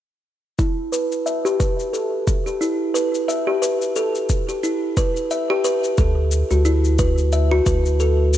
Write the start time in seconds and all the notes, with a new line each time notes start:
0.59 E4, kick, cabasa
0.92 B4, cabasa
1.12 cabasa
1.26 E5, cabasa
1.45 G4, cabasa
1.60 B4, kick, cabasa
1.79 cabasa
1.93 A4, cabasa
2.27 kick, cabasa
2.46 G4, cabasa
2.61 E4, cabasa
2.94 B4, cabasa
3.15 cabasa
3.28 E5, cabasa
3.47 G4
3.62 B4, cabasa
3.82 cabasa
3.96 A4, cabasa
4.15 cabasa
4.29 kick, cabasa
4.49 G4, cabasa
4.63 E4, cabasa
4.97 B4, kick, cabasa
5.17 cabasa
5.31 E5, cabasa
5.50 G4
5.64 B4, cabasa
5.84 cabasa
5.98 D2 A4, kick, cabasa
6.32 cabasa
6.51 D2 F#4, cabasa
6.65 E4, cabasa
6.84 cabasa
6.99 B4, kick, cabasa
7.18 cabasa
7.32 E5, cabasa
7.51 F#4
7.66 D2 B4, kick, cabasa
7.86 cabasa
8.00 A4, cabasa
8.34 cabasa